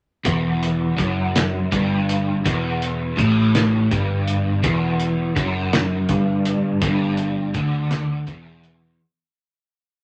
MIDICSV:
0, 0, Header, 1, 4, 480
1, 0, Start_track
1, 0, Key_signature, 1, "minor"
1, 0, Tempo, 730816
1, 160, Time_signature, 6, 3, 24, 8
1, 6592, End_track
2, 0, Start_track
2, 0, Title_t, "Overdriven electric guitar"
2, 0, Program_c, 0, 29
2, 160, Note_on_c, 0, 40, 103
2, 634, Note_off_c, 0, 40, 0
2, 643, Note_on_c, 0, 42, 100
2, 1115, Note_off_c, 0, 42, 0
2, 1126, Note_on_c, 0, 43, 106
2, 1597, Note_off_c, 0, 43, 0
2, 1610, Note_on_c, 0, 40, 104
2, 2079, Note_off_c, 0, 40, 0
2, 2083, Note_on_c, 0, 45, 99
2, 2555, Note_off_c, 0, 45, 0
2, 2572, Note_on_c, 0, 43, 111
2, 3035, Note_off_c, 0, 43, 0
2, 3038, Note_on_c, 0, 40, 103
2, 3512, Note_off_c, 0, 40, 0
2, 3517, Note_on_c, 0, 42, 103
2, 4005, Note_off_c, 0, 42, 0
2, 4005, Note_on_c, 0, 43, 107
2, 4470, Note_off_c, 0, 43, 0
2, 4478, Note_on_c, 0, 43, 100
2, 4951, Note_off_c, 0, 43, 0
2, 4957, Note_on_c, 0, 50, 102
2, 5431, Note_off_c, 0, 50, 0
2, 5433, Note_on_c, 0, 40, 110
2, 5908, Note_off_c, 0, 40, 0
2, 6592, End_track
3, 0, Start_track
3, 0, Title_t, "Picked electric bass"
3, 0, Program_c, 1, 34
3, 166, Note_on_c, 1, 28, 89
3, 618, Note_off_c, 1, 28, 0
3, 647, Note_on_c, 1, 30, 93
3, 1098, Note_off_c, 1, 30, 0
3, 1133, Note_on_c, 1, 31, 92
3, 1581, Note_off_c, 1, 31, 0
3, 1615, Note_on_c, 1, 28, 93
3, 2062, Note_off_c, 1, 28, 0
3, 2088, Note_on_c, 1, 33, 91
3, 2539, Note_off_c, 1, 33, 0
3, 2572, Note_on_c, 1, 31, 97
3, 3020, Note_off_c, 1, 31, 0
3, 3046, Note_on_c, 1, 28, 95
3, 3497, Note_off_c, 1, 28, 0
3, 3521, Note_on_c, 1, 30, 100
3, 3974, Note_off_c, 1, 30, 0
3, 4000, Note_on_c, 1, 31, 93
3, 4453, Note_off_c, 1, 31, 0
3, 4477, Note_on_c, 1, 31, 94
3, 4932, Note_off_c, 1, 31, 0
3, 4957, Note_on_c, 1, 38, 89
3, 5411, Note_off_c, 1, 38, 0
3, 5432, Note_on_c, 1, 28, 86
3, 5889, Note_off_c, 1, 28, 0
3, 6592, End_track
4, 0, Start_track
4, 0, Title_t, "Drums"
4, 165, Note_on_c, 9, 36, 107
4, 165, Note_on_c, 9, 42, 96
4, 230, Note_off_c, 9, 42, 0
4, 231, Note_off_c, 9, 36, 0
4, 411, Note_on_c, 9, 42, 72
4, 477, Note_off_c, 9, 42, 0
4, 645, Note_on_c, 9, 42, 70
4, 647, Note_on_c, 9, 36, 99
4, 711, Note_off_c, 9, 42, 0
4, 713, Note_off_c, 9, 36, 0
4, 891, Note_on_c, 9, 42, 101
4, 892, Note_on_c, 9, 38, 110
4, 956, Note_off_c, 9, 42, 0
4, 958, Note_off_c, 9, 38, 0
4, 1131, Note_on_c, 9, 36, 108
4, 1133, Note_on_c, 9, 42, 75
4, 1197, Note_off_c, 9, 36, 0
4, 1198, Note_off_c, 9, 42, 0
4, 1374, Note_on_c, 9, 42, 75
4, 1440, Note_off_c, 9, 42, 0
4, 1613, Note_on_c, 9, 36, 104
4, 1614, Note_on_c, 9, 42, 99
4, 1678, Note_off_c, 9, 36, 0
4, 1679, Note_off_c, 9, 42, 0
4, 1852, Note_on_c, 9, 42, 70
4, 1918, Note_off_c, 9, 42, 0
4, 2092, Note_on_c, 9, 36, 98
4, 2092, Note_on_c, 9, 42, 75
4, 2158, Note_off_c, 9, 36, 0
4, 2158, Note_off_c, 9, 42, 0
4, 2331, Note_on_c, 9, 42, 98
4, 2332, Note_on_c, 9, 38, 108
4, 2396, Note_off_c, 9, 42, 0
4, 2398, Note_off_c, 9, 38, 0
4, 2570, Note_on_c, 9, 42, 64
4, 2571, Note_on_c, 9, 36, 100
4, 2636, Note_off_c, 9, 42, 0
4, 2637, Note_off_c, 9, 36, 0
4, 2808, Note_on_c, 9, 42, 75
4, 2873, Note_off_c, 9, 42, 0
4, 3045, Note_on_c, 9, 42, 93
4, 3048, Note_on_c, 9, 36, 113
4, 3111, Note_off_c, 9, 42, 0
4, 3113, Note_off_c, 9, 36, 0
4, 3281, Note_on_c, 9, 42, 62
4, 3347, Note_off_c, 9, 42, 0
4, 3524, Note_on_c, 9, 36, 98
4, 3524, Note_on_c, 9, 42, 71
4, 3589, Note_off_c, 9, 36, 0
4, 3589, Note_off_c, 9, 42, 0
4, 3764, Note_on_c, 9, 42, 93
4, 3766, Note_on_c, 9, 38, 116
4, 3830, Note_off_c, 9, 42, 0
4, 3831, Note_off_c, 9, 38, 0
4, 3998, Note_on_c, 9, 42, 67
4, 4001, Note_on_c, 9, 36, 105
4, 4064, Note_off_c, 9, 42, 0
4, 4067, Note_off_c, 9, 36, 0
4, 4239, Note_on_c, 9, 42, 75
4, 4305, Note_off_c, 9, 42, 0
4, 4478, Note_on_c, 9, 36, 105
4, 4478, Note_on_c, 9, 42, 96
4, 4543, Note_off_c, 9, 36, 0
4, 4543, Note_off_c, 9, 42, 0
4, 4712, Note_on_c, 9, 42, 72
4, 4778, Note_off_c, 9, 42, 0
4, 4954, Note_on_c, 9, 42, 69
4, 4956, Note_on_c, 9, 36, 103
4, 5019, Note_off_c, 9, 42, 0
4, 5022, Note_off_c, 9, 36, 0
4, 5194, Note_on_c, 9, 42, 104
4, 5195, Note_on_c, 9, 38, 108
4, 5259, Note_off_c, 9, 42, 0
4, 5261, Note_off_c, 9, 38, 0
4, 5431, Note_on_c, 9, 42, 78
4, 5435, Note_on_c, 9, 36, 99
4, 5496, Note_off_c, 9, 42, 0
4, 5501, Note_off_c, 9, 36, 0
4, 5672, Note_on_c, 9, 42, 74
4, 5737, Note_off_c, 9, 42, 0
4, 6592, End_track
0, 0, End_of_file